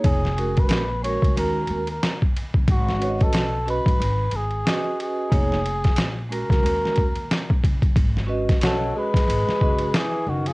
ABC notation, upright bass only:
X:1
M:4/4
L:1/16
Q:"Swing 16ths" 1/4=91
K:Abdor
V:1 name="Upright bass" clef=bass
F,,,4 B,,,3 D,, E,,2 E,,2 z3 G,,, | A,,,4 =B,,,3 =A,,, _A,,,2 A,,,2 z4 | F,,,4 B,,,3 D,, E,,2 E,,2 z F,, G,,,2 | A,,,4 =B,,,2 z2 A,,, z G,,,2 z2 G,,,2 |]